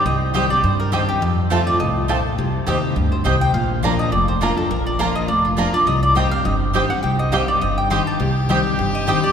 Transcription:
0.05 C2 C3 D#5
0.34 D#3 G3 C4 G4 D#5 G5
0.50 C4 G4 D5
0.64 G2 C5
0.80 A#4
0.92 D#3 G3 C4 G4 A4 D#5 G5
1.08 C4 G4
1.22 F2 A4
1.50 F3 A3 C4 F4 A4 C5 A5
1.67 D5
1.80 C2 A2 D#5
2.08 A#2 A3 C4 F4 A4 C5 A5
2.38 C2 C3
2.67 D#2 D#3 G3 C4 G4 D#5 G5
2.96 D2 G2
3.12 C5
3.24 C2 C3 C4 G4 D#5 G5
3.41 G5
3.54 A#1 A#2 F5
3.83 F3 A#3 D4 F4 A#4 D5 A#5
3.99 D#5
4.12 F1 F2 D5
4.28 C5
4.41 F3 A#3 D4 F4 A#4 D5 A#5
4.57 D4 F4 A4
4.71 A#1 A#2 A#4
4.87 D5
4.99 F3 A#3 D4 F4 A#4 D5 F5 A#5
5.15 D#5
5.28 F1 F2 D5
5.45 F4
5.57 F3 A#3 D4 F4 A#4 D5 A#5
5.73 D4 F4 D5
5.87 C2 C3 D#5
6.03 D5
6.15 D#3 G3 C4 G4 D#5 G5
6.31 C4 G4 F5
6.45 G1 G2 D#5
6.73 D#3 G3 C4 G4 D#5 G5
6.90 C4 G4 F#5
7.03 C2 C3 G5
7.19 D#5
7.32 D#3 G3 C4 G4 D#5 F5 G5
7.48 D5
7.61 G1 G2 D#5
7.78 G5
7.90 D#3 G3 C4 G4 D#5 G5 C6
8.07 A5
8.19 C2 C3 G4
8.49 D#3 G3 C4 G4 D#5 G5
8.78 G1 G2
8.95 D#5
9.07 D#3 G3 C4 G4 C5 D#5 G5
9.24 C4 G4 D5

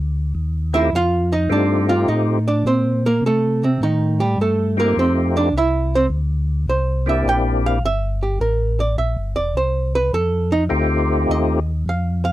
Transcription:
Already playing: D2
0.35 D#2
0.73 A3 C4 D#4 E4 F4 G4 E5
0.92 F2 F5
0.96 F4
1.32 D#4 D#5
1.49 G2 A3 C4 D4 D#4 F4 G4 D5
1.89 F4 F5
2.08 A2 D#4 D#5
2.48 D4 D5
2.65 A#2 C4 C5
3.06 A#3 A#4
3.22 C3
3.26 A3 A4
3.63 C3 C4
3.80 A2 D#3 D#4
4.20 G3 G4
4.38 G2 A3 A4
4.77 A3 A#3 C4 D#4 F4 G4 A#4
4.96 F2 C4 C5
5.37 D4 D5
5.52 C2
5.58 E4 E5
5.95 C4 C5
6.10 D2
6.68 C2 C5
7.06 A#3 C4 D4 E4 G4 E5
7.25 A#1
7.29 G5
7.66 F5
7.82 G1 E5
8.23 G4
8.40 A1 A#4
8.80 D5
8.97 A#1 E5
9.17 G1
9.36 E1 D5
9.55 C2 C5
9.95 B4
10.13 F2 A4
10.52 D#4
10.69 D2 A3 C4 D#4 F4 G4
11.29 D#2 D#5
11.86 F2 F5
12.25 F5

